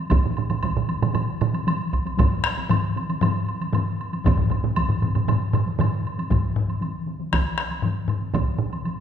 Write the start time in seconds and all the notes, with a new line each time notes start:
0.10 taiko, taiko mid, taiko high, high woodblock
0.26 taiko mid
0.37 taiko mid, high woodblock
0.50 taiko mid, taiko high, high woodblock
0.63 taiko, taiko high, high woodblock
0.77 taiko mid
0.89 taiko high, high woodblock
1.01 taiko mid, taiko high, high woodblock
1.14 taiko mid, taiko high, high woodblock
1.41 taiko mid, high woodblock
1.53 taiko high, high woodblock
1.67 taiko high, high woodblock
1.93 taiko, high woodblock
2.06 taiko high, high woodblock
2.17 taiko, taiko low-mid, taiko high, high woodblock
2.44 taiko rim, high woodblock
2.58 taiko high
2.69 taiko low-mid, taiko high, high woodblock
2.96 taiko high, high woodblock
3.09 taiko high, high woodblock
3.21 taiko low-mid, taiko high, high woodblock
3.48 high woodblock
3.61 taiko high, high woodblock
3.73 taiko low-mid, taiko high, high woodblock
4.01 high woodblock
4.13 taiko high, high woodblock
4.24 taiko, taiko low-mid, taiko mid, taiko high, high woodblock
4.37 taiko low-mid, taiko mid
4.50 taiko low-mid, taiko mid, high woodblock
4.64 taiko low-mid, taiko mid, taiko high
4.76 taiko, taiko high, high woodblock
4.89 taiko low-mid, taiko mid
5.02 taiko low-mid, taiko mid, taiko high, high woodblock
5.15 taiko low-mid, taiko mid, taiko high, high woodblock
5.28 taiko low-mid, taiko mid, taiko high, high woodblock
5.53 taiko low-mid, taiko mid, high woodblock
5.66 taiko high
5.79 taiko low-mid, taiko mid, taiko high, high woodblock
6.07 high woodblock
6.18 taiko high, high woodblock
6.30 taiko, taiko low-mid, taiko high, high woodblock
6.56 taiko low-mid
6.68 taiko high, high woodblock
6.81 taiko high, high woodblock
7.06 taiko high
7.20 taiko high
7.32 taiko rim, taiko, taiko high, high woodblock
7.58 taiko rim, high woodblock
7.71 taiko high, high woodblock
7.82 taiko low-mid, taiko high, high woodblock
8.08 taiko low-mid, high woodblock
8.21 taiko high
8.34 taiko, taiko mid, taiko high, high woodblock
8.58 taiko mid
8.72 taiko high, high woodblock
8.85 taiko high, high woodblock